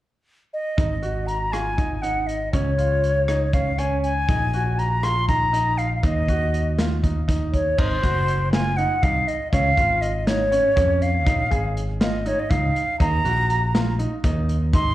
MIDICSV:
0, 0, Header, 1, 5, 480
1, 0, Start_track
1, 0, Tempo, 500000
1, 752, Time_signature, 7, 3, 24, 8
1, 7711, Tempo, 496278
1, 14398, End_track
2, 0, Start_track
2, 0, Title_t, "Flute"
2, 0, Program_c, 0, 73
2, 513, Note_on_c, 0, 75, 61
2, 1215, Note_on_c, 0, 82, 64
2, 1229, Note_off_c, 0, 75, 0
2, 1461, Note_on_c, 0, 80, 71
2, 1476, Note_off_c, 0, 82, 0
2, 1939, Note_on_c, 0, 78, 73
2, 1954, Note_off_c, 0, 80, 0
2, 2178, Note_on_c, 0, 75, 63
2, 2192, Note_off_c, 0, 78, 0
2, 2423, Note_off_c, 0, 75, 0
2, 2429, Note_on_c, 0, 73, 84
2, 3395, Note_on_c, 0, 77, 72
2, 3409, Note_off_c, 0, 73, 0
2, 3637, Note_on_c, 0, 80, 71
2, 3651, Note_off_c, 0, 77, 0
2, 3859, Note_off_c, 0, 80, 0
2, 3865, Note_on_c, 0, 80, 79
2, 4597, Note_on_c, 0, 82, 79
2, 4611, Note_off_c, 0, 80, 0
2, 4837, Note_on_c, 0, 84, 93
2, 4851, Note_off_c, 0, 82, 0
2, 5064, Note_off_c, 0, 84, 0
2, 5070, Note_on_c, 0, 82, 101
2, 5546, Note_on_c, 0, 77, 78
2, 5561, Note_off_c, 0, 82, 0
2, 5715, Note_off_c, 0, 77, 0
2, 5721, Note_on_c, 0, 77, 52
2, 5802, Note_on_c, 0, 75, 84
2, 5817, Note_off_c, 0, 77, 0
2, 6517, Note_off_c, 0, 75, 0
2, 7228, Note_on_c, 0, 73, 75
2, 7472, Note_on_c, 0, 72, 97
2, 7486, Note_off_c, 0, 73, 0
2, 8185, Note_off_c, 0, 72, 0
2, 8190, Note_on_c, 0, 80, 93
2, 8423, Note_on_c, 0, 78, 87
2, 8437, Note_off_c, 0, 80, 0
2, 8671, Note_on_c, 0, 77, 82
2, 8685, Note_off_c, 0, 78, 0
2, 8916, Note_on_c, 0, 75, 72
2, 8930, Note_off_c, 0, 77, 0
2, 9142, Note_off_c, 0, 75, 0
2, 9147, Note_on_c, 0, 77, 97
2, 9627, Note_on_c, 0, 75, 79
2, 9642, Note_off_c, 0, 77, 0
2, 9874, Note_on_c, 0, 73, 86
2, 9888, Note_off_c, 0, 75, 0
2, 10601, Note_on_c, 0, 77, 71
2, 10615, Note_off_c, 0, 73, 0
2, 11298, Note_off_c, 0, 77, 0
2, 11571, Note_on_c, 0, 75, 75
2, 11813, Note_on_c, 0, 73, 78
2, 11827, Note_off_c, 0, 75, 0
2, 11932, Note_on_c, 0, 75, 68
2, 11946, Note_off_c, 0, 73, 0
2, 12032, Note_on_c, 0, 77, 76
2, 12046, Note_off_c, 0, 75, 0
2, 12509, Note_off_c, 0, 77, 0
2, 12515, Note_on_c, 0, 82, 111
2, 13434, Note_off_c, 0, 82, 0
2, 14201, Note_on_c, 0, 84, 111
2, 14398, Note_off_c, 0, 84, 0
2, 14398, End_track
3, 0, Start_track
3, 0, Title_t, "Grand piano"
3, 0, Program_c, 1, 0
3, 744, Note_on_c, 1, 63, 66
3, 894, Note_off_c, 1, 63, 0
3, 984, Note_on_c, 1, 66, 50
3, 1281, Note_off_c, 1, 66, 0
3, 1473, Note_on_c, 1, 65, 54
3, 1620, Note_off_c, 1, 65, 0
3, 1706, Note_on_c, 1, 63, 56
3, 1855, Note_off_c, 1, 63, 0
3, 1947, Note_on_c, 1, 63, 61
3, 2243, Note_off_c, 1, 63, 0
3, 2429, Note_on_c, 1, 61, 71
3, 2578, Note_off_c, 1, 61, 0
3, 2669, Note_on_c, 1, 65, 55
3, 2965, Note_off_c, 1, 65, 0
3, 3152, Note_on_c, 1, 63, 62
3, 3300, Note_off_c, 1, 63, 0
3, 3394, Note_on_c, 1, 61, 60
3, 3541, Note_off_c, 1, 61, 0
3, 3632, Note_on_c, 1, 61, 67
3, 3927, Note_off_c, 1, 61, 0
3, 4116, Note_on_c, 1, 63, 70
3, 4263, Note_off_c, 1, 63, 0
3, 4357, Note_on_c, 1, 66, 58
3, 4651, Note_off_c, 1, 66, 0
3, 4829, Note_on_c, 1, 65, 55
3, 4977, Note_off_c, 1, 65, 0
3, 5077, Note_on_c, 1, 63, 57
3, 5223, Note_off_c, 1, 63, 0
3, 5309, Note_on_c, 1, 63, 71
3, 5605, Note_off_c, 1, 63, 0
3, 5792, Note_on_c, 1, 63, 75
3, 5940, Note_off_c, 1, 63, 0
3, 6037, Note_on_c, 1, 66, 59
3, 6330, Note_off_c, 1, 66, 0
3, 6514, Note_on_c, 1, 65, 57
3, 6661, Note_off_c, 1, 65, 0
3, 6752, Note_on_c, 1, 63, 57
3, 6899, Note_off_c, 1, 63, 0
3, 6988, Note_on_c, 1, 63, 71
3, 7283, Note_off_c, 1, 63, 0
3, 7470, Note_on_c, 1, 63, 72
3, 7617, Note_off_c, 1, 63, 0
3, 7704, Note_on_c, 1, 66, 55
3, 8001, Note_off_c, 1, 66, 0
3, 8193, Note_on_c, 1, 65, 62
3, 8340, Note_off_c, 1, 65, 0
3, 8434, Note_on_c, 1, 63, 64
3, 8581, Note_off_c, 1, 63, 0
3, 8672, Note_on_c, 1, 63, 63
3, 8968, Note_off_c, 1, 63, 0
3, 9157, Note_on_c, 1, 61, 77
3, 9304, Note_off_c, 1, 61, 0
3, 9400, Note_on_c, 1, 65, 65
3, 9693, Note_off_c, 1, 65, 0
3, 9875, Note_on_c, 1, 63, 62
3, 10023, Note_off_c, 1, 63, 0
3, 10114, Note_on_c, 1, 61, 65
3, 10262, Note_off_c, 1, 61, 0
3, 10350, Note_on_c, 1, 61, 69
3, 10647, Note_off_c, 1, 61, 0
3, 10833, Note_on_c, 1, 63, 72
3, 10982, Note_off_c, 1, 63, 0
3, 11071, Note_on_c, 1, 68, 60
3, 11367, Note_off_c, 1, 68, 0
3, 11554, Note_on_c, 1, 65, 68
3, 11702, Note_off_c, 1, 65, 0
3, 11797, Note_on_c, 1, 63, 68
3, 11944, Note_off_c, 1, 63, 0
3, 12029, Note_on_c, 1, 63, 67
3, 12326, Note_off_c, 1, 63, 0
3, 12514, Note_on_c, 1, 63, 83
3, 12662, Note_off_c, 1, 63, 0
3, 12753, Note_on_c, 1, 66, 59
3, 13047, Note_off_c, 1, 66, 0
3, 13237, Note_on_c, 1, 65, 66
3, 13383, Note_off_c, 1, 65, 0
3, 13474, Note_on_c, 1, 63, 59
3, 13621, Note_off_c, 1, 63, 0
3, 13720, Note_on_c, 1, 63, 67
3, 14011, Note_off_c, 1, 63, 0
3, 14203, Note_on_c, 1, 63, 77
3, 14346, Note_off_c, 1, 63, 0
3, 14398, End_track
4, 0, Start_track
4, 0, Title_t, "Picked electric bass"
4, 0, Program_c, 2, 34
4, 747, Note_on_c, 2, 32, 57
4, 2397, Note_off_c, 2, 32, 0
4, 2435, Note_on_c, 2, 37, 59
4, 4081, Note_off_c, 2, 37, 0
4, 4114, Note_on_c, 2, 34, 66
4, 5760, Note_off_c, 2, 34, 0
4, 5790, Note_on_c, 2, 39, 67
4, 7435, Note_off_c, 2, 39, 0
4, 7474, Note_on_c, 2, 32, 91
4, 7668, Note_off_c, 2, 32, 0
4, 7715, Note_on_c, 2, 30, 73
4, 8500, Note_off_c, 2, 30, 0
4, 8673, Note_on_c, 2, 36, 74
4, 8870, Note_off_c, 2, 36, 0
4, 9160, Note_on_c, 2, 37, 84
4, 9354, Note_off_c, 2, 37, 0
4, 9396, Note_on_c, 2, 32, 67
4, 10180, Note_off_c, 2, 32, 0
4, 10360, Note_on_c, 2, 41, 73
4, 10841, Note_off_c, 2, 41, 0
4, 10841, Note_on_c, 2, 34, 88
4, 11035, Note_off_c, 2, 34, 0
4, 11081, Note_on_c, 2, 32, 66
4, 11862, Note_off_c, 2, 32, 0
4, 12040, Note_on_c, 2, 37, 75
4, 12234, Note_off_c, 2, 37, 0
4, 12515, Note_on_c, 2, 39, 84
4, 12711, Note_off_c, 2, 39, 0
4, 12755, Note_on_c, 2, 34, 75
4, 13537, Note_off_c, 2, 34, 0
4, 13717, Note_on_c, 2, 39, 80
4, 14192, Note_on_c, 2, 32, 84
4, 14206, Note_off_c, 2, 39, 0
4, 14387, Note_off_c, 2, 32, 0
4, 14398, End_track
5, 0, Start_track
5, 0, Title_t, "Drums"
5, 749, Note_on_c, 9, 36, 81
5, 749, Note_on_c, 9, 42, 58
5, 845, Note_off_c, 9, 36, 0
5, 845, Note_off_c, 9, 42, 0
5, 987, Note_on_c, 9, 42, 43
5, 1083, Note_off_c, 9, 42, 0
5, 1231, Note_on_c, 9, 42, 47
5, 1327, Note_off_c, 9, 42, 0
5, 1472, Note_on_c, 9, 37, 79
5, 1472, Note_on_c, 9, 42, 58
5, 1568, Note_off_c, 9, 37, 0
5, 1568, Note_off_c, 9, 42, 0
5, 1710, Note_on_c, 9, 42, 43
5, 1711, Note_on_c, 9, 36, 56
5, 1806, Note_off_c, 9, 42, 0
5, 1807, Note_off_c, 9, 36, 0
5, 1952, Note_on_c, 9, 42, 59
5, 2048, Note_off_c, 9, 42, 0
5, 2196, Note_on_c, 9, 42, 47
5, 2292, Note_off_c, 9, 42, 0
5, 2432, Note_on_c, 9, 42, 59
5, 2433, Note_on_c, 9, 36, 79
5, 2528, Note_off_c, 9, 42, 0
5, 2529, Note_off_c, 9, 36, 0
5, 2673, Note_on_c, 9, 42, 44
5, 2769, Note_off_c, 9, 42, 0
5, 2915, Note_on_c, 9, 42, 44
5, 3011, Note_off_c, 9, 42, 0
5, 3151, Note_on_c, 9, 37, 77
5, 3151, Note_on_c, 9, 42, 59
5, 3247, Note_off_c, 9, 37, 0
5, 3247, Note_off_c, 9, 42, 0
5, 3391, Note_on_c, 9, 42, 47
5, 3393, Note_on_c, 9, 36, 59
5, 3487, Note_off_c, 9, 42, 0
5, 3489, Note_off_c, 9, 36, 0
5, 3632, Note_on_c, 9, 42, 60
5, 3728, Note_off_c, 9, 42, 0
5, 3876, Note_on_c, 9, 42, 39
5, 3972, Note_off_c, 9, 42, 0
5, 4115, Note_on_c, 9, 36, 76
5, 4115, Note_on_c, 9, 42, 57
5, 4211, Note_off_c, 9, 36, 0
5, 4211, Note_off_c, 9, 42, 0
5, 4353, Note_on_c, 9, 42, 47
5, 4449, Note_off_c, 9, 42, 0
5, 4598, Note_on_c, 9, 42, 42
5, 4694, Note_off_c, 9, 42, 0
5, 4831, Note_on_c, 9, 37, 80
5, 4831, Note_on_c, 9, 42, 61
5, 4927, Note_off_c, 9, 37, 0
5, 4927, Note_off_c, 9, 42, 0
5, 5075, Note_on_c, 9, 36, 59
5, 5078, Note_on_c, 9, 42, 46
5, 5171, Note_off_c, 9, 36, 0
5, 5174, Note_off_c, 9, 42, 0
5, 5315, Note_on_c, 9, 42, 67
5, 5411, Note_off_c, 9, 42, 0
5, 5553, Note_on_c, 9, 42, 44
5, 5649, Note_off_c, 9, 42, 0
5, 5790, Note_on_c, 9, 42, 61
5, 5793, Note_on_c, 9, 36, 82
5, 5886, Note_off_c, 9, 42, 0
5, 5889, Note_off_c, 9, 36, 0
5, 6034, Note_on_c, 9, 36, 53
5, 6034, Note_on_c, 9, 42, 50
5, 6130, Note_off_c, 9, 36, 0
5, 6130, Note_off_c, 9, 42, 0
5, 6278, Note_on_c, 9, 42, 50
5, 6374, Note_off_c, 9, 42, 0
5, 6514, Note_on_c, 9, 38, 83
5, 6514, Note_on_c, 9, 42, 68
5, 6610, Note_off_c, 9, 38, 0
5, 6610, Note_off_c, 9, 42, 0
5, 6755, Note_on_c, 9, 36, 55
5, 6756, Note_on_c, 9, 42, 51
5, 6851, Note_off_c, 9, 36, 0
5, 6852, Note_off_c, 9, 42, 0
5, 6995, Note_on_c, 9, 36, 80
5, 6997, Note_on_c, 9, 38, 28
5, 6997, Note_on_c, 9, 42, 66
5, 7091, Note_off_c, 9, 36, 0
5, 7093, Note_off_c, 9, 38, 0
5, 7093, Note_off_c, 9, 42, 0
5, 7234, Note_on_c, 9, 36, 51
5, 7237, Note_on_c, 9, 42, 45
5, 7330, Note_off_c, 9, 36, 0
5, 7333, Note_off_c, 9, 42, 0
5, 7474, Note_on_c, 9, 36, 88
5, 7475, Note_on_c, 9, 49, 75
5, 7570, Note_off_c, 9, 36, 0
5, 7571, Note_off_c, 9, 49, 0
5, 7711, Note_on_c, 9, 38, 28
5, 7711, Note_on_c, 9, 42, 47
5, 7713, Note_on_c, 9, 36, 61
5, 7808, Note_off_c, 9, 38, 0
5, 7808, Note_off_c, 9, 42, 0
5, 7810, Note_off_c, 9, 36, 0
5, 7951, Note_on_c, 9, 42, 50
5, 8048, Note_off_c, 9, 42, 0
5, 8192, Note_on_c, 9, 38, 97
5, 8192, Note_on_c, 9, 42, 61
5, 8289, Note_off_c, 9, 38, 0
5, 8289, Note_off_c, 9, 42, 0
5, 8437, Note_on_c, 9, 42, 46
5, 8534, Note_off_c, 9, 42, 0
5, 8676, Note_on_c, 9, 42, 64
5, 8677, Note_on_c, 9, 36, 86
5, 8772, Note_off_c, 9, 42, 0
5, 8773, Note_off_c, 9, 36, 0
5, 8920, Note_on_c, 9, 42, 49
5, 9016, Note_off_c, 9, 42, 0
5, 9157, Note_on_c, 9, 36, 91
5, 9158, Note_on_c, 9, 42, 69
5, 9254, Note_off_c, 9, 36, 0
5, 9255, Note_off_c, 9, 42, 0
5, 9396, Note_on_c, 9, 36, 58
5, 9397, Note_on_c, 9, 42, 52
5, 9493, Note_off_c, 9, 36, 0
5, 9494, Note_off_c, 9, 42, 0
5, 9637, Note_on_c, 9, 42, 53
5, 9734, Note_off_c, 9, 42, 0
5, 9878, Note_on_c, 9, 38, 84
5, 9878, Note_on_c, 9, 42, 67
5, 9974, Note_off_c, 9, 38, 0
5, 9974, Note_off_c, 9, 42, 0
5, 10119, Note_on_c, 9, 42, 58
5, 10216, Note_off_c, 9, 42, 0
5, 10356, Note_on_c, 9, 42, 67
5, 10358, Note_on_c, 9, 36, 89
5, 10453, Note_off_c, 9, 42, 0
5, 10455, Note_off_c, 9, 36, 0
5, 10599, Note_on_c, 9, 42, 50
5, 10695, Note_off_c, 9, 42, 0
5, 10838, Note_on_c, 9, 36, 87
5, 10842, Note_on_c, 9, 42, 69
5, 10935, Note_off_c, 9, 36, 0
5, 10938, Note_off_c, 9, 42, 0
5, 11079, Note_on_c, 9, 36, 52
5, 11084, Note_on_c, 9, 42, 45
5, 11176, Note_off_c, 9, 36, 0
5, 11181, Note_off_c, 9, 42, 0
5, 11325, Note_on_c, 9, 42, 50
5, 11422, Note_off_c, 9, 42, 0
5, 11558, Note_on_c, 9, 38, 100
5, 11558, Note_on_c, 9, 42, 67
5, 11655, Note_off_c, 9, 38, 0
5, 11655, Note_off_c, 9, 42, 0
5, 11798, Note_on_c, 9, 42, 55
5, 11895, Note_off_c, 9, 42, 0
5, 12039, Note_on_c, 9, 36, 89
5, 12039, Note_on_c, 9, 42, 61
5, 12135, Note_off_c, 9, 36, 0
5, 12136, Note_off_c, 9, 42, 0
5, 12284, Note_on_c, 9, 42, 46
5, 12381, Note_off_c, 9, 42, 0
5, 12518, Note_on_c, 9, 36, 84
5, 12520, Note_on_c, 9, 42, 63
5, 12615, Note_off_c, 9, 36, 0
5, 12617, Note_off_c, 9, 42, 0
5, 12760, Note_on_c, 9, 42, 49
5, 12857, Note_off_c, 9, 42, 0
5, 12998, Note_on_c, 9, 42, 49
5, 13094, Note_off_c, 9, 42, 0
5, 13239, Note_on_c, 9, 38, 99
5, 13239, Note_on_c, 9, 42, 65
5, 13336, Note_off_c, 9, 38, 0
5, 13336, Note_off_c, 9, 42, 0
5, 13478, Note_on_c, 9, 42, 58
5, 13574, Note_off_c, 9, 42, 0
5, 13713, Note_on_c, 9, 42, 77
5, 13715, Note_on_c, 9, 36, 88
5, 13810, Note_off_c, 9, 42, 0
5, 13812, Note_off_c, 9, 36, 0
5, 13957, Note_on_c, 9, 42, 49
5, 14054, Note_off_c, 9, 42, 0
5, 14192, Note_on_c, 9, 42, 73
5, 14193, Note_on_c, 9, 36, 88
5, 14289, Note_off_c, 9, 42, 0
5, 14290, Note_off_c, 9, 36, 0
5, 14398, End_track
0, 0, End_of_file